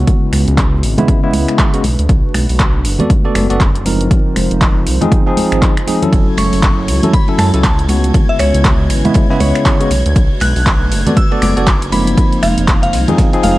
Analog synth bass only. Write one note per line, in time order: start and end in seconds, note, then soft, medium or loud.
0.33 0.45 C#2 medium
0.48 0.85 C#2 medium
0.83 0.95 G#1 medium
1.33 1.46 C#2 medium
1.84 1.96 B1 medium
1.99 2.07 D2 medium
2.09 2.21 B1 loud
2.34 2.47 B1 medium
2.49 2.86 B1 medium
2.85 2.97 F#1 medium
3.35 3.48 F#1 loud
3.50 4.08 F#1 medium
4.36 4.48 F1 medium
4.51 4.88 F1 medium
4.87 4.99 C2 medium
5.52 5.60 G#1 medium
6.13 6.25 F#1 loud
6.38 6.50 F#1 medium
6.53 6.90 F#1 medium
6.88 7.00 C#2 medium
7.39 7.51 F#2 loud
7.54 8.11 C#2 medium
8.40 8.52 C#2 medium
8.54 8.91 C#2 medium
8.90 9.02 G#1 medium
9.40 9.53 C#2 medium
9.91 10.03 B1 medium
10.06 10.14 D2 medium
10.16 10.28 B1 loud
10.41 10.53 B1 medium
10.56 10.93 B1 medium
10.92 11.04 F#1 medium
11.42 11.54 F#1 loud
11.57 12.15 F#1 medium
12.43 12.55 F1 medium
12.58 12.95 F1 medium
12.93 13.06 C2 medium
13.44 13.56 F1 medium